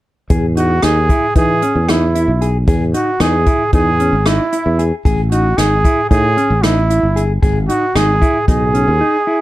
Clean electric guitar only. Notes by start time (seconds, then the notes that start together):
0.30 G#4
0.57 D#4
0.83 D#4
1.10 E4
1.36 D#4
1.63 C#4
1.89 D#4
2.15 E4
2.42 G#4
2.68 G#4
2.94 D#4
3.21 D#4
3.47 E4
3.74 D#4
4.00 C#4
4.27 D#4
4.53 E4
4.79 G#4
5.05 G#4
5.32 D#4
5.58 D#4
5.84 E4
6.11 D#4
6.37 C#4
6.64 D#4
6.90 E4
7.16 G#4
7.42 G#4
7.69 D#4
7.95 D#4
8.22 E4
8.48 D#4
8.74 C#4
9.01 D#4
9.27 E4